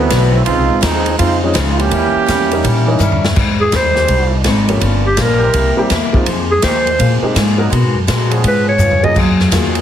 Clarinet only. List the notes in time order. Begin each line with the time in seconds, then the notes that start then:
3.61 G#4
3.76 C5
5.06 G4
5.21 A#4
6.51 G#4
6.64 C5
8.47 B4
8.69 C#5
9.04 D#5